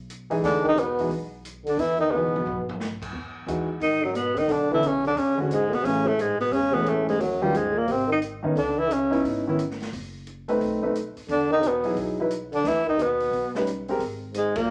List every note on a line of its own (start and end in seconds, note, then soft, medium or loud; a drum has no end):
0.00 0.39 B1 medium
0.10 closed hi-hat soft
0.30 0.74 E3 medium
0.30 0.74 G#3 medium
0.30 0.74 D#4 medium
0.30 0.74 G#4 medium
0.30 open hi-hat soft
0.42 1.06 E2 medium
0.42 0.62 D3 medium
0.42 0.63 D4 medium
0.42 snare soft
0.42 open hi-hat soft
0.63 0.78 D#3 medium
0.63 kick medium
0.68 0.81 D#4 medium
0.76 1.10 B2 medium
0.76 1.12 B3 medium
0.76 closed hi-hat soft
0.99 1.09 E3 medium
0.99 1.10 G#3 medium
0.99 1.10 D#4 soft
0.99 1.10 F#4 medium
0.99 open hi-hat soft
1.09 1.74 B1 medium
1.09 open hi-hat soft
1.45 closed hi-hat soft
1.65 1.81 D3 medium
1.65 1.81 D4 medium
1.65 open hi-hat soft
1.77 2.29 E2 medium
1.77 1.98 E3 medium
1.77 2.00 E4 medium
1.77 open hi-hat soft
1.99 2.14 D#3 medium
1.99 2.13 D#4 medium
2.12 2.67 B2 medium
2.12 2.32 E3 soft
2.12 2.32 G#3 soft
2.12 2.67 B3 medium
2.12 2.32 D#4 soft
2.12 2.32 F#4 medium
2.12 mid tom soft
2.33 muted upright bass stroke soft
2.33 high tom medium
2.45 3.10 B1 medium
2.45 floor tom medium
2.69 floor tom medium
2.80 snare soft
3.02 kick medium
3.02 crash medium
3.13 3.45 E2 medium
3.46 3.78 D#2 medium
3.46 3.66 E3 soft
3.46 3.66 G#3 soft
3.46 3.67 D#4 soft
3.46 3.67 F#4 medium
3.46 closed hi-hat soft
3.80 4.32 G#2 medium
3.80 4.04 D#3 medium
3.80 4.06 D#4 medium
3.80 open hi-hat soft
4.02 4.17 F#2 soft
4.02 4.17 F#3 medium
4.15 4.39 B2 medium
4.15 4.40 B3 medium
4.15 closed hi-hat soft
4.35 4.48 C2 medium
4.35 4.50 D#3 medium
4.35 4.53 D#4 medium
4.35 open hi-hat soft
4.48 5.13 B1 medium
4.48 4.70 D3 medium
4.48 4.72 D4 medium
4.48 open hi-hat soft
4.71 4.82 D3 medium
4.71 4.86 E3 medium
4.71 4.83 B3 soft
4.71 4.83 C#4 soft
4.71 4.88 E4 medium
4.71 4.83 A4 medium
4.83 5.05 C#3 medium
4.83 closed hi-hat soft
4.87 5.06 C#4 medium
5.05 5.18 D3 medium
5.05 5.19 D4 medium
5.05 open hi-hat soft
5.15 5.68 E2 medium
5.15 5.37 C#3 medium
5.15 5.39 C#4 medium
5.15 open hi-hat soft
5.37 5.51 E2 soft
5.37 5.49 D3 medium
5.37 5.54 E3 soft
5.37 5.50 G#3 medium
5.37 5.50 C#4 medium
5.37 5.50 F#4 medium
5.50 5.73 G#2 medium
5.50 5.75 G#3 medium
5.50 closed hi-hat soft
5.72 5.85 B2 medium
5.72 5.87 B3 medium
5.72 muted upright bass stroke soft
5.72 open hi-hat soft
5.83 6.49 A1 medium
5.83 6.07 C#3 medium
5.83 6.04 E3 medium
5.83 6.05 A3 soft
5.83 6.09 C#4 medium
5.83 6.05 C#4 soft
5.83 open hi-hat soft
5.87 6.06 G#4 medium
6.06 6.20 A2 medium
6.06 6.22 A3 medium
6.19 6.39 G#2 medium
6.19 6.40 G#3 medium
6.19 closed hi-hat soft
6.40 6.53 B2 medium
6.40 6.54 B3 medium
6.40 open hi-hat soft
6.51 7.17 E1 medium
6.51 6.75 C#3 medium
6.51 6.76 C#4 medium
6.51 open hi-hat soft
6.73 6.86 B2 medium
6.73 7.18 E3 medium
6.73 7.18 A3 medium
6.73 6.90 B3 medium
6.73 7.18 C#4 medium
6.73 7.19 G#4 medium
6.85 7.06 A2 medium
6.85 7.09 A3 medium
6.85 closed hi-hat soft
7.06 7.22 G#2 medium
7.06 7.23 G#3 medium
7.06 open hi-hat soft
7.20 7.85 D#2 medium
7.20 7.44 F#2 medium
7.20 7.44 F#3 medium
7.20 open hi-hat soft
7.42 7.56 G2 medium
7.42 7.53 D#3 medium
7.42 7.54 F#3 medium
7.42 7.58 G3 medium
7.42 7.54 C#4 medium
7.42 7.54 F4 medium
7.54 7.76 G#2 medium
7.54 7.80 G#3 medium
7.54 closed hi-hat soft
7.74 7.89 A#2 medium
7.74 7.93 A#3 medium
7.87 8.40 G#1 medium
7.87 8.07 C3 medium
7.87 open hi-hat soft
7.92 8.12 C4 medium
8.07 8.20 D#3 medium
8.12 8.19 D#4 medium
8.22 closed hi-hat soft
8.43 8.55 C2 medium
8.43 8.55 D#3 medium
8.43 8.55 B3 medium
8.43 8.55 C#4 medium
8.43 8.55 D#4 medium
8.55 9.21 C#2 medium
8.55 8.79 D3 medium
8.55 8.81 D4 medium
8.55 open hi-hat soft
8.78 8.92 E3 medium
8.78 8.94 E4 medium
8.91 9.25 C#3 medium
8.91 9.25 C#4 medium
8.91 closed hi-hat soft
9.11 9.44 B3 medium
9.11 9.44 C#4 medium
9.11 9.43 D#4 medium
9.11 9.44 E4 medium
9.11 open hi-hat soft
9.24 9.89 G#1 medium
9.24 open hi-hat soft
9.47 9.58 D#3 medium
9.47 9.58 B3 medium
9.47 9.58 C#4 medium
9.47 9.59 E4 medium
9.59 closed hi-hat soft
9.71 snare soft
9.80 snare soft
9.80 open hi-hat soft
9.93 10.57 F#1 medium
9.93 open hi-hat soft
10.27 closed hi-hat soft
10.48 10.80 A3 medium
10.48 10.80 C4 medium
10.48 10.81 D#4 medium
10.48 10.80 B4 medium
10.48 open hi-hat soft
10.60 11.12 B1 medium
10.60 open hi-hat soft
10.82 10.93 A3 medium
10.82 10.94 C4 soft
10.82 10.94 D#4 soft
10.82 10.94 B4 medium
10.95 closed hi-hat soft
11.16 muted upright bass stroke soft
11.16 open hi-hat soft
11.28 11.93 E2 medium
11.28 11.49 D3 medium
11.28 11.50 D4 medium
11.28 open hi-hat soft
11.51 11.65 D#3 medium
11.51 11.69 D#4 medium
11.63 11.97 B2 medium
11.63 closed hi-hat soft
11.68 11.99 B3 medium
11.83 12.16 F#3 medium
11.83 12.16 D#4 medium
11.83 12.16 E4 medium
11.83 12.16 G#4 medium
11.83 open hi-hat soft
11.95 12.60 B1 medium
11.95 open hi-hat soft
12.19 12.29 F#3 medium
12.19 12.30 D#4 soft
12.19 12.30 E4 soft
12.19 12.31 B4 medium
12.30 closed hi-hat soft
12.52 12.66 D3 medium
12.52 12.70 D4 medium
12.52 open hi-hat soft
12.64 13.29 D#2 medium
12.64 12.84 E3 medium
12.64 snare soft
12.64 open hi-hat soft
12.68 12.88 E4 medium
12.85 13.00 D#3 medium
12.85 13.04 D#4 medium
12.85 kick soft
12.98 13.54 B2 medium
12.98 13.56 B3 medium
12.98 closed hi-hat soft
13.20 open hi-hat soft
13.31 13.96 B1 medium
13.31 open hi-hat soft
13.55 13.66 G3 medium
13.55 13.66 C#4 soft
13.55 13.66 D#4 soft
13.55 13.66 B4 medium
13.55 snare soft
13.67 closed hi-hat soft
13.88 14.00 G#3 medium
13.88 14.00 C4 medium
13.88 14.00 G4 medium
13.88 14.00 A#4 medium
13.88 open hi-hat soft
13.99 14.64 G#1 medium
13.99 open hi-hat soft
14.34 14.57 G#2 medium
14.34 14.59 G#3 medium
14.34 closed hi-hat soft
14.55 14.70 A#2 medium
14.55 14.70 A#3 medium
14.55 kick medium
14.55 ride medium
14.67 14.70 C2 medium